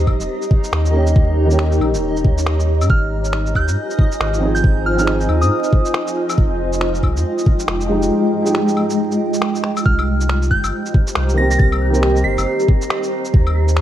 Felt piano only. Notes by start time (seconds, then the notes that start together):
0.91 D#3 A#3
0.96 C#4 G4
1.46 D#3 A#3
1.51 C#4 G4
4.37 F3 C4
4.43 D#4 G#4
4.94 F3 C4
4.99 D#4 G#4
7.86 F3 G#3
7.92 D#4 G4
8.42 F3 G#3
8.47 D#4 G4
11.34 D#3 A#3
11.39 C4 G4
11.90 D#3 A#3
11.96 C4 G4